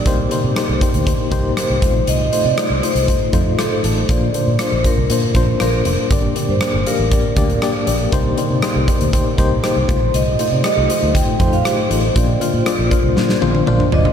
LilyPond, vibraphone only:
\new Staff \with { instrumentName = "Vibraphone" } { \time 4/4 \key f \mixolydian \tempo 4 = 119 r2. c''4 | ees''8. d''8. c''4. a'4 | d''4 c''8 bes'4. bes'4 | d''8. c''8. bes'2 r8 |
r2. c''4 | ees''8. d''16 ees''4 g''8. f''16 c''4 | d''8 f'4 f'4. r8 ees''8 | }